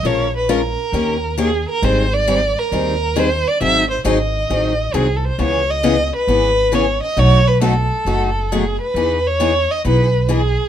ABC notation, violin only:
X:1
M:4/4
L:1/16
Q:"Swing" 1/4=135
K:G#phr
V:1 name="Violin"
c2 B2 ^A8 G2 A2 | ^B2 =d4 ^A6 B2 d2 | e2 ^B2 d8 G3/2 A/2 B2 | c2 d4 B6 c2 d2 |
c2 B2 A8 G2 B2- | B2 c4 d2 B4 G4 |]